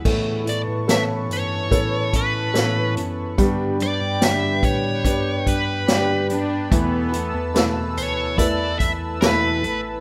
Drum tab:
CC |x-------|--------|--------|
HH |-xxxxxxx|xxxxxxxx|xxxxxxxx|
SD |--o---o-|--o---o-|--o---o-|
BD |o---oo--|o--ooo--|o---oo--|